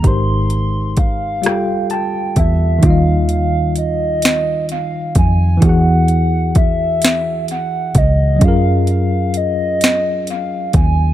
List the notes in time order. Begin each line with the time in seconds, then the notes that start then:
0.02 G#1 G#3 D#4 G4, kick, closed hi-hat
0.07 A#4 C5 C6
0.50 closed hi-hat
0.97 F5, kick, closed hi-hat
1.42 F1 G3 F4 G4, closed hi-hat
1.46 A4 G5, cross-stick
1.90 G5 A5, closed hi-hat
2.36 E2 E5, kick, closed hi-hat
2.79 D#3 D#4
2.83 D#2 F4 F5, kick, closed hi-hat
2.87 G3 D#5
3.29 F5, closed hi-hat
3.76 D#5, closed hi-hat
4.22 snare, closed hi-hat
4.69 F5, closed hi-hat
5.15 F2 G#5, kick, closed hi-hat
5.57 E3 E4
5.62 E2 F#4 F#5, kick, closed hi-hat
5.66 G#4 F#5
6.08 closed hi-hat
6.55 E5, kick, closed hi-hat
7.02 snare, closed hi-hat
7.48 F#5, closed hi-hat
7.95 C#2 D#5, kick, closed hi-hat
8.36 F#3 C#4
8.41 F#2 F4 G#4 F5, kick, closed hi-hat
8.48 A#4
8.87 F5, closed hi-hat
9.34 D#5, closed hi-hat
9.81 snare, closed hi-hat
10.27 F5, closed hi-hat
10.73 D#2 G#5, kick, closed hi-hat